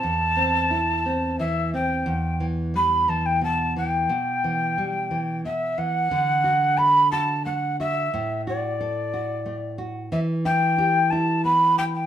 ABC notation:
X:1
M:3/4
L:1/16
Q:1/4=90
K:Dmix
V:1 name="Quena"
a8 e2 g2- | g2 z2 b2 a g a2 g2- | g8 e2 f2- | f4 b2 a2 f2 e2- |
e2 d8 z2 | e2 g4 a2 b2 g g |]
V:2 name="Nylon-string guitar"
E,,2 C2 E2 C2 E,2 C2 | E,,2 E,2 G,2 E,2 B,,2 E,2 | B,,2 E,2 G,2 E,2 B,,2 E,2 | D,2 F2 A2 F2 A,2 F2 |
A,,2 F2 A2 F2 A,2 F2 | E,2 E2 G2 E2 B,2 E2 |]